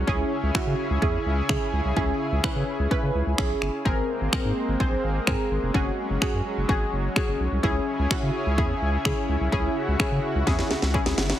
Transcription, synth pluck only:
0.07 C#4 E4 G#4
0.55 C#4 E4 F#4
1.02 C#4 E4 G#4
1.49 C#4 E4 G#4
1.96 C#4 E4 G#4
2.44 C#4 E4 B4
2.91 C#4 E4 B4
3.38 C#4 E4 G#4
3.85 C4 G#4 A#4
4.32 C4 G#4 A#4
4.80 C4 G#4 C5
5.27 C4 G#4 A#4
5.74 C#4 F#4 G#4
6.22 C#4 F#4 G#4
6.69 C#4 F#4 G#4
7.16 C#4 F#4 G#4
7.63 C#4 E4 G#4
8.11 C#4 E4 F#4
8.58 C#4 E4 G#4
9.05 C#4 E4 G#4
9.52 C#4 E4 G#4
9.99 C#4 E4 G#4
10.47 C#4 E4 G#4
10.94 C#4 E4 G#4

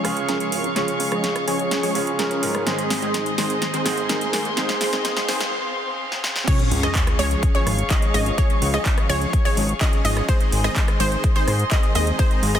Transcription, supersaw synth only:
Already playing: F3 G#3 C#4 G#4 C#5
0.29 F3 G#3 C#4 G#4 A#4
0.76 F3 G#3 C#4 G#4 C#5
1.12 F3 G#3 C#4 G#4 D#5
1.48 F3 G#3 C#4 G#4 C#5
1.83 F3 G#3 C#4 G#4 C#5
2.19 F3 G#3 C#4 G#4 A#4
2.67 D#3 G#3 C4 G#4 C5
3.02 D#3 G#3 C4 G#4 D#5
3.38 D#3 G#3 C4 G#4 C5
3.74 D#3 G#3 C4 G#4 C5
4.09 D#3 G#3 C4 G#4 A#4
4.57 D#3 G#3 C4 G#4 C5
4.93 D#3 G#3 C4 G#4 D#5
5.28 D#3 G#3 C4 G#4 C5
6.48 F3 G#3 C#4 G#4 C#5
6.83 F3 G#3 C#4 G#4 D#5
7.19 F3 G#3 C#4 G#4 C#5
7.55 F3 G#3 C#4 G#4 C#5
7.90 F3 G#3 C#4 G#4 D#5
8.14 F3 G#3 C#4 G#4 D#5
8.38 F3 G#3 C#4 G#4 C#5
8.74 F3 G#3 C#4 G#4 D#5
9.09 F3 G#3 C#4 G#4 C#5
9.45 F3 G#3 C#4 G#4 C#5
9.81 F3 G#3 C#4 G#4 D#5
10.05 F3 G#3 C#4 G#4 D#5
10.29 D#3 G#3 C4 G#4 C5
10.64 D#3 G#3 C4 G#4 D#5
11.00 D#3 G#3 C4 G#4 C5
11.36 D#3 G#3 C4 G#4 C5
11.71 D#3 G#3 C4 G#4 D#5
11.95 D#3 G#3 C4 G#4 D#5
12.19 D#3 G#3 C4 G#4 C5
12.55 D#3 G#3 C4 G#4 D#5

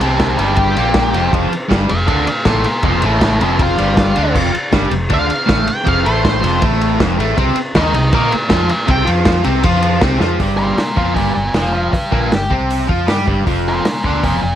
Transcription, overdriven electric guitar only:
0.01 C3 C4
0.37 G2 G3
0.76 A#2 A#3
1.14 F2 F3
1.32 F2 F3
1.51 muted overdriven electric guitar stroke
1.69 G2 G3
1.89 F2
2.07 D3 D4
2.27 muted overdriven electric guitar stroke
2.45 A2 A3
2.83 F2 F3
3.02 A2 A3
3.40 F2 F3
3.77 G2 G3
4.16 D3 D4
4.33 F2 F3
4.53 muted overdriven electric guitar stroke
4.72 G2 G3
4.91 F2
5.09 D3 D4
5.28 muted overdriven electric guitar stroke
5.46 A2 A3
5.84 F2 F3
6.04 A2 A3
6.41 F2 F3
6.61 A2 A3
6.99 F2 F3
7.18 A2 A3
7.37 C3 C4
7.57 muted overdriven electric guitar stroke
7.75 D#3 D#4
7.94 C3
8.13 A#3 A#4
8.32 muted overdriven electric guitar stroke
8.49 F3 F4
8.87 C3 C4
9.05 F3 F4
9.44 C3 C4
9.64 F3 F4
10.01 C3 C4
10.20 F3 F4
10.39 G2 G3
10.78 muted overdriven electric guitar stroke
10.96 F3 F4
11.16 G2 G3
11.36 G2
11.54 F2 F3
11.93 muted overdriven electric guitar stroke
12.11 A#2 A#3
12.30 G2
12.50 C3 C4
12.87 F3 F4
13.07 G3 G4
13.26 G2 G3
13.45 F2 F3
13.86 muted overdriven electric guitar stroke
14.05 D3 D4
14.23 F2 F3
14.42 F2

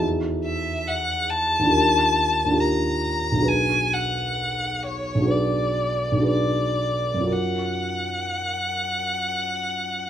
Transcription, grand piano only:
Already playing: E2 D#4 E4 F#4
0.00 G#4
1.59 D#2 D4
1.65 F4 G4
1.72 A#4
2.45 D#2 D4
2.51 F4 G4
2.57 A#4
3.32 B1 D4
3.38 F#4 G#4
3.44 B4
5.15 B1 D4
5.21 F#4 G#4
5.27 B4
6.12 B1 D4
6.18 F#4 G#4
6.24 B4
7.14 F#2 C#4
7.20 F4 F#4
7.27 A#4

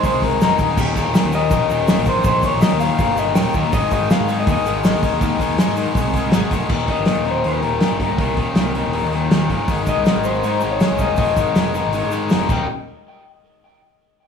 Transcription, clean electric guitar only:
0.05 C5
0.23 A#4
0.42 A#4
0.80 G4
0.94 G#4
1.13 A#4
1.35 D#5
2.09 C5
2.26 C5
2.45 C#5
2.61 D#5
2.80 F5
2.98 F5
3.19 D#5
3.35 G5
3.74 D#5
3.93 D#5
4.12 F5
4.40 D#5
4.52 D#5
6.90 D#5
7.31 C5
7.47 A#4
8.06 A#4
9.89 D#5
10.25 C5
10.72 C#5
11.01 D#5
11.18 D#5
12.52 G5

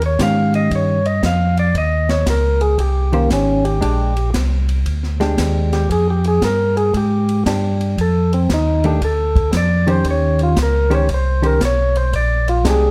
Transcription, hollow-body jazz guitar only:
0.20 D#3 C#4 G4 C5
3.12 D#3 C#4 G4 C5
3.81 G#3 D4 G4
5.20 G#3 D4 G4
7.47 D4 G4
8.84 D#3 A3 D4
9.87 D#3 C#4 G4 C5
10.90 D#3 C#4 G4 C5
11.42 D#3 C#4 G4 C5
12.65 G#3 D4 G4

